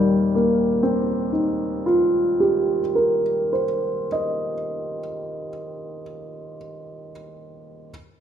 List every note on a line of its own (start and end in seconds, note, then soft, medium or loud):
0.00 2.79 D#2 soft
0.00 3.20 A#2 soft
0.00 3.63 D#3 soft
0.00 4.07 G3 soft
0.00 2.78 G6 soft
0.35 4.52 A#3 soft
0.83 4.99 C4 soft
1.33 5.49 D#4 soft
1.86 6.03 F4 soft
2.40 6.57 G4 soft
2.95 7.12 A#4 soft
3.53 7.12 C5 soft
4.12 7.12 D#5 soft